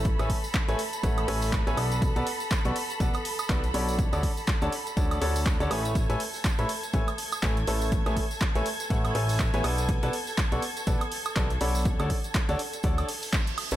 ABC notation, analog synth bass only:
X:1
M:4/4
L:1/16
Q:"Swing 16ths" 1/4=122
K:A
V:1 name="Analog synth bass" clef=bass
A,,, A,,, z3 A,,, z2 A,,,2 A,,,3 A,,, B,,,2- | B,,, B,,, z3 B,,, z2 B,,, z3 B,,,2 B,,,2- | B,,, D,, z3 D,, z2 D,,2 D,,3 D,, A,,,2- | A,,, A,,, z3 A,,, z2 A,,, z3 A,,,2 A,,,2- |
A,,, A,,, z3 A,,, z2 A,,,2 A,,,3 A,,, B,,,2- | B,,, B,,, z3 B,,, z2 B,,, z3 B,,,2 B,,,2- | B,,, D,, z3 D,, z2 D,,2 z4 z A,,, |]